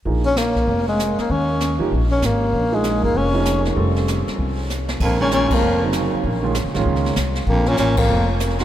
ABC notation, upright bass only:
X:1
M:4/4
L:1/8
Q:"Swing" 1/4=194
K:Bbdor
V:1 name="Upright bass" clef=bass
B,,,4 F,,,3 z | E,,3 D,, B,,,2 A,,,2 | B,,,3 A,,, F,,,4 | F,,,3 z C,,4 |
[K:Bbm] B,,,3 z F,,,3 z | B,,,2- (3B,,, D,, =A,,, D,,2 C,,2 | B,,,2 =A,,,2 F,,,4 |]